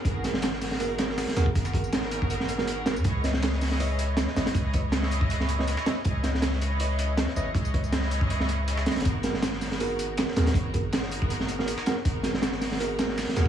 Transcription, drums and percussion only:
0.05 kick, closed hi-hat, tambourine
0.24 snare, closed hi-hat, tambourine
0.34 snare
0.42 snare, closed hi-hat, tambourine
0.53 snare
0.61 snare, open hi-hat, tambourine
0.71 snare
0.80 closed hi-hat, open hi-hat
0.98 snare, closed hi-hat, tambourine
1.09 snare
1.17 snare, open hi-hat, tambourine
1.28 snare
1.36 snare, closed hi-hat, tambourine
1.46 kick
1.55 kick, closed hi-hat, tambourine
1.65 snare, tambourine
1.74 kick, closed hi-hat
1.84 tambourine
1.93 snare, closed hi-hat, tambourine
2.02 snare
2.11 closed hi-hat, tambourine
2.22 kick
2.30 closed hi-hat, tambourine
2.40 snare
2.49 closed hi-hat, tambourine
2.58 snare
2.67 closed hi-hat, tambourine
2.86 snare, closed hi-hat, tambourine
2.96 tambourine
3.04 kick, closed hi-hat, tambourine
3.24 snare, closed hi-hat, tambourine
3.33 snare
3.42 snare, closed hi-hat, tambourine
3.52 snare
3.61 snare, open hi-hat, tambourine
3.71 snare
3.80 closed hi-hat, open hi-hat
3.99 closed hi-hat, tambourine
4.17 snare, closed hi-hat, tambourine
4.28 snare
4.36 snare, closed hi-hat, tambourine
4.46 snare, closed hi-hat
4.55 kick, closed hi-hat, tambourine
4.73 kick, closed hi-hat, tambourine
4.92 snare, closed hi-hat, tambourine
5.03 snare
5.11 closed hi-hat, tambourine
5.21 kick
5.30 closed hi-hat, tambourine
5.40 snare
5.49 closed hi-hat, tambourine
5.59 snare
5.68 closed hi-hat, tambourine
5.77 snare
5.86 snare, closed hi-hat, tambourine
6.05 kick, closed hi-hat, tambourine
6.23 snare, closed hi-hat, tambourine
6.34 snare
6.42 snare, closed hi-hat, tambourine
6.52 snare
6.61 closed hi-hat, tambourine
6.80 closed hi-hat, open hi-hat
6.99 closed hi-hat, tambourine
7.17 snare, closed hi-hat, tambourine
7.28 snare
7.36 tambourine
7.55 kick, closed hi-hat, tambourine
7.65 tambourine
7.74 kick, closed hi-hat
7.84 tambourine
7.92 snare, closed hi-hat, tambourine
8.02 snare
8.11 closed hi-hat, tambourine
8.21 kick
8.30 closed hi-hat, tambourine
8.40 snare
8.49 closed hi-hat, tambourine
8.68 closed hi-hat, tambourine
8.77 snare
8.86 snare, closed hi-hat, tambourine
8.91 snare, closed hi-hat
8.96 snare, closed hi-hat
9.00 snare, closed hi-hat
9.05 kick, closed hi-hat, tambourine
9.23 snare, closed hi-hat, tambourine
9.34 snare
9.42 snare, closed hi-hat, tambourine
9.53 snare
9.61 snare, open hi-hat, tambourine
9.72 snare
9.80 closed hi-hat, open hi-hat
9.99 closed hi-hat, tambourine
10.17 snare, closed hi-hat, tambourine
10.28 snare
10.36 snare, closed hi-hat, tambourine
10.46 snare, closed hi-hat
10.54 kick, closed hi-hat, tambourine
10.74 kick, closed hi-hat, tambourine
10.93 snare, closed hi-hat, tambourine
11.03 snare
11.12 closed hi-hat, tambourine
11.22 kick
11.30 closed hi-hat, tambourine
11.40 snare
11.48 closed hi-hat, tambourine
11.59 snare
11.68 closed hi-hat, tambourine
11.78 snare
11.86 snare, closed hi-hat, tambourine
12.05 kick, closed hi-hat, tambourine
12.23 snare, closed hi-hat, tambourine
12.34 snare
12.42 snare, closed hi-hat, tambourine
12.52 snare
12.61 snare, open hi-hat, tambourine
12.72 snare
12.80 closed hi-hat, open hi-hat
12.99 snare, closed hi-hat, tambourine
13.09 snare
13.17 snare, open hi-hat, tambourine
13.29 snare
13.36 snare, closed hi-hat, tambourine

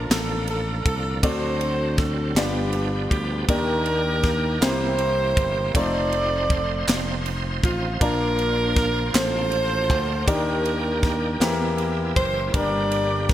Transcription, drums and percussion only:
0.11 snare, clap, ride
0.48 ride
0.86 kick, ride
1.23 kick, ride
1.61 ride
1.98 kick, snare, ride
2.37 snare, clap, ride
2.73 ride
3.11 kick, ride
3.49 kick, ride
3.86 ride
4.23 kick, snare, ride
4.62 snare, clap, ride
4.99 ride
5.37 kick, ride
5.75 kick, ride
6.12 ride
6.50 kick, ride
6.88 snare, clap, ride
7.26 ride
7.64 kick, ride
8.01 kick, ride
8.39 ride
8.76 kick, snare, ride
9.15 snare, clap, ride
9.52 ride
9.90 kick, ride
10.28 kick, ride
10.66 ride
11.03 kick, snare, ride
11.41 snare, clap, ride
11.78 ride
12.16 kick, ride
12.54 kick, ride
12.92 ride
13.29 kick, snare, ride

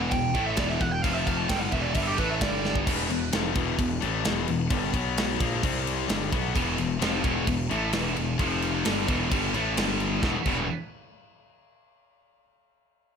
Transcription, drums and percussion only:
0.11 kick, crash
0.34 kick, crash
0.57 kick, snare, crash
0.81 kick, crash
1.04 kick, crash
1.27 kick, crash
1.49 kick, snare, crash
1.72 kick, crash
1.94 kick, crash
2.18 kick, crash
2.41 kick, snare, crash
2.65 snare
2.76 kick
2.87 kick, crash
3.10 crash
3.32 snare, crash
3.55 kick, crash
3.79 kick, crash
4.02 crash
4.25 snare, crash
4.48 crash
4.70 kick, crash
4.94 kick, crash
5.17 snare, crash
5.41 kick, crash
5.63 kick, crash
5.87 crash
6.09 snare, crash
6.33 kick, crash
6.56 kick, crash
6.78 crash
7.02 snare, crash
7.24 kick, crash
7.47 kick, crash
7.71 crash
7.93 snare, crash
8.17 crash
8.39 kick, crash
8.62 crash
8.85 snare, crash
9.08 kick, crash
9.32 kick, crash
9.54 crash
9.77 snare, crash
10.00 crash
10.23 kick, snare
10.45 kick, crash

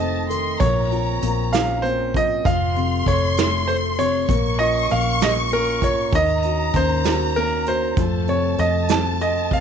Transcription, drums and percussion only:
0.30 closed hi-hat
0.60 kick, closed hi-hat
0.92 closed hi-hat
1.22 closed hi-hat
1.53 snare, closed hi-hat
1.84 closed hi-hat
2.14 kick, closed hi-hat
2.45 kick, closed hi-hat
2.76 closed hi-hat
3.06 kick, closed hi-hat
3.37 snare, closed hi-hat
3.68 closed hi-hat
3.99 closed hi-hat
4.29 kick, closed hi-hat
4.59 closed hi-hat
4.90 closed hi-hat
5.21 snare, closed hi-hat
5.52 closed hi-hat
5.82 kick, closed hi-hat
6.12 kick, closed hi-hat
6.43 closed hi-hat
6.74 kick, closed hi-hat
7.04 snare, closed hi-hat
7.36 closed hi-hat
7.66 closed hi-hat
7.97 kick, closed hi-hat
8.27 closed hi-hat
8.58 closed hi-hat
8.88 snare, closed hi-hat
9.21 closed hi-hat
9.51 kick, closed hi-hat

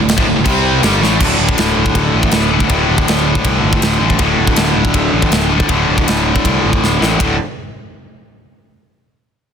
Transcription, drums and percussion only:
0.09 snare, crash
0.18 kick
0.46 kick, crash
0.83 snare, crash
1.03 snare
1.21 kick, crash
1.49 kick
1.58 snare, ride bell
1.86 kick
1.95 kick, ride bell
2.23 kick
2.32 snare, ride bell
2.60 kick
2.70 kick, ride bell
2.98 kick
3.08 snare, ride bell
3.35 kick
3.45 kick, ride bell
3.73 kick
3.82 snare, ride bell
4.10 kick
4.19 kick, ride bell
4.47 kick
4.56 snare, ride bell
4.85 kick
4.94 kick, ride bell
5.22 kick
5.32 snare, ride bell
5.60 kick
5.69 kick, ride bell
5.98 kick
6.08 snare, ride bell
6.36 kick
6.45 kick, ride bell
6.73 kick
6.84 snare
7.02 snare
7.20 kick, ride bell

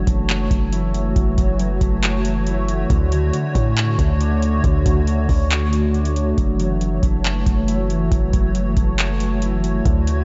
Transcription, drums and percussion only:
0.07 kick, closed hi-hat
0.29 clap, closed hi-hat
0.51 kick, closed hi-hat
0.73 closed hi-hat
0.94 closed hi-hat
1.16 kick, closed hi-hat
1.38 kick, closed hi-hat
1.59 closed hi-hat
1.81 kick, closed hi-hat
2.03 clap, closed hi-hat
2.25 closed hi-hat
2.47 closed hi-hat
2.68 closed hi-hat
2.90 kick, closed hi-hat
3.12 closed hi-hat
3.33 closed hi-hat
3.55 kick, closed hi-hat
3.77 clap, closed hi-hat
3.99 kick, closed hi-hat
4.21 closed hi-hat
4.42 closed hi-hat
4.64 kick, closed hi-hat
4.86 kick, closed hi-hat
5.07 closed hi-hat
5.29 kick, open hi-hat
5.51 clap, closed hi-hat
5.73 closed hi-hat
5.94 closed hi-hat
6.05 closed hi-hat
6.16 closed hi-hat
6.38 kick, closed hi-hat
6.60 closed hi-hat
6.81 closed hi-hat
7.03 kick, closed hi-hat
7.25 clap, closed hi-hat
7.46 kick, closed hi-hat
7.68 closed hi-hat
7.90 closed hi-hat
8.12 kick, closed hi-hat
8.33 kick, closed hi-hat
8.55 closed hi-hat
8.77 kick, closed hi-hat
8.98 clap, closed hi-hat
9.20 closed hi-hat
9.42 closed hi-hat
9.64 closed hi-hat
9.85 kick, closed hi-hat
10.07 closed hi-hat

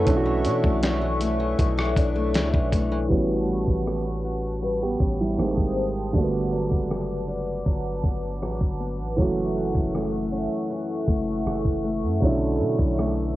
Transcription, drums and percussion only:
0.07 kick, closed hi-hat
0.45 closed hi-hat
0.64 kick
0.83 snare, closed hi-hat
1.21 closed hi-hat
1.59 kick, closed hi-hat
1.79 cross-stick
1.96 kick, closed hi-hat
2.34 snare, closed hi-hat
2.54 kick
2.72 kick, closed hi-hat
3.11 kick
3.49 closed hi-hat
3.68 kick
3.87 cross-stick, closed hi-hat
4.24 closed hi-hat
4.63 closed hi-hat
5.00 kick, closed hi-hat
5.38 cross-stick, closed hi-hat
5.57 kick
5.76 closed hi-hat
6.14 kick, closed hi-hat
6.52 closed hi-hat
6.71 kick
6.90 cross-stick, closed hi-hat
7.28 closed hi-hat
7.66 kick, closed hi-hat
8.04 kick, closed hi-hat
8.42 cross-stick, closed hi-hat
8.61 kick
8.80 closed hi-hat
9.18 kick, closed hi-hat
9.56 closed hi-hat
9.75 kick
9.94 cross-stick, closed hi-hat
10.32 closed hi-hat
10.70 closed hi-hat
11.08 kick, closed hi-hat
11.46 cross-stick, closed hi-hat
11.65 kick
11.84 closed hi-hat
12.22 kick, closed hi-hat
12.60 closed hi-hat
12.79 kick
12.98 cross-stick, closed hi-hat

